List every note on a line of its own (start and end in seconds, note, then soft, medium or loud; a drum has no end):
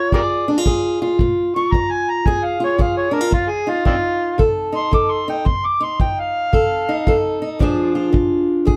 0.00 0.48 F4 medium
0.00 0.13 C#5 loud
0.12 0.62 F2 medium
0.12 0.20 G4 medium
0.12 0.65 G#4 medium
0.12 0.21 A#4 medium
0.12 0.47 D5 loud
0.12 kick medium
0.48 0.58 D4 medium
0.58 1.01 F4 medium
0.66 1.16 F3 medium
0.66 1.18 G#4 medium
0.66 kick medium
1.02 1.56 F4 medium
1.19 1.70 A#2 medium
1.19 kick medium
1.56 2.60 F4 medium
1.56 1.74 C#6 loud
1.72 2.23 F3 medium
1.72 1.93 A#5 loud
1.72 kick medium
1.91 2.12 G#5 loud
2.10 2.28 A#5 loud
2.26 2.76 F2 medium
2.26 2.78 G#4 medium
2.26 2.46 G#5 loud
2.26 kick medium
2.44 2.62 F5 medium
2.60 3.11 F4 medium
2.60 2.80 C#5 loud
2.78 3.29 F3 medium
2.78 3.31 G#4 medium
2.78 2.96 F5 medium
2.78 kick medium
2.97 3.16 C#5 medium
3.11 3.21 D4 medium
3.11 3.32 A#4 medium
3.21 3.32 F4 medium
3.31 3.82 F2 medium
3.31 3.51 F4 loud
3.31 kick medium
3.50 3.71 G#4 medium
3.67 4.71 D#4 medium
3.67 3.86 F4 medium
3.85 4.36 F3 medium
3.85 3.95 C4 medium
3.85 3.94 D4 medium
3.85 4.38 F4 loud
3.85 kick medium
4.38 4.89 C3 medium
4.38 4.92 A4 medium
4.38 kick medium
4.72 5.27 D#4 medium
4.72 4.93 C6 loud
4.91 5.42 F3 medium
4.91 5.44 A4 medium
4.91 5.13 D6 medium
4.91 kick medium
5.11 5.29 C6 loud
5.28 5.45 D#4 medium
5.28 5.48 G5 medium
5.45 5.96 F2 medium
5.45 5.67 C6 loud
5.45 kick medium
5.66 5.85 D6 loud
5.80 6.87 D#4 medium
5.80 6.00 C6 loud
6.00 6.50 F3 medium
6.00 6.21 G5 loud
6.00 kick medium
6.20 7.23 F5 loud
6.53 7.03 C3 medium
6.53 7.07 A4 medium
6.53 kick medium
6.89 7.41 D#4 medium
7.07 7.57 F3 medium
7.07 7.59 A4 medium
7.07 kick medium
7.42 7.59 D#4 medium
7.59 8.10 A#2 medium
7.59 8.12 F3 medium
7.59 8.76 D4 medium
7.59 7.95 F4 medium
7.59 8.65 G#4 medium
7.59 kick medium
7.95 8.76 F4 medium
8.13 8.63 F3 medium
8.13 kick medium
8.65 8.76 F2 medium
8.65 8.76 G#4 medium
8.65 kick medium